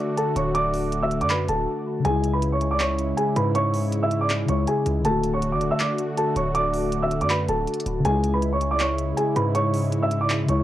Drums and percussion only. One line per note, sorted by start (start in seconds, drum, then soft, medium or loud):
0.17 closed hi-hat medium
0.36 closed hi-hat medium
0.55 closed hi-hat medium
0.74 open hi-hat medium
0.92 closed hi-hat medium
1.11 closed hi-hat medium
1.21 closed hi-hat medium
1.30 clap loud
1.30 closed hi-hat medium
1.48 closed hi-hat medium
2.05 closed hi-hat medium
2.24 closed hi-hat medium
2.42 closed hi-hat medium
2.61 closed hi-hat medium
2.80 clap loud
2.80 closed hi-hat medium
2.99 closed hi-hat medium
3.18 closed hi-hat medium
3.36 closed hi-hat medium
3.55 closed hi-hat medium
3.74 open hi-hat medium
3.92 closed hi-hat medium
4.11 closed hi-hat medium
4.30 clap loud
4.30 closed hi-hat medium
4.49 closed hi-hat medium
4.67 closed hi-hat medium
4.86 closed hi-hat medium
5.05 closed hi-hat medium
5.24 closed hi-hat medium
5.42 closed hi-hat medium
5.61 closed hi-hat medium
5.80 clap loud
5.80 closed hi-hat medium
5.98 closed hi-hat medium
6.17 closed hi-hat medium
6.36 closed hi-hat medium
6.55 closed hi-hat medium
6.74 open hi-hat medium
6.92 closed hi-hat medium
7.11 closed hi-hat medium
7.21 closed hi-hat medium
7.30 clap loud
7.30 closed hi-hat medium
7.48 closed hi-hat medium
7.67 closed hi-hat soft
7.74 closed hi-hat medium
7.80 closed hi-hat medium
7.86 closed hi-hat medium
8.05 closed hi-hat medium
8.24 closed hi-hat medium
8.42 closed hi-hat medium
8.61 closed hi-hat medium
8.80 clap loud
8.80 closed hi-hat medium
8.98 closed hi-hat medium
9.17 closed hi-hat medium
9.36 closed hi-hat medium
9.55 closed hi-hat medium
9.74 open hi-hat medium
9.92 closed hi-hat medium
10.11 closed hi-hat medium
10.30 clap loud
10.30 closed hi-hat medium
10.49 closed hi-hat medium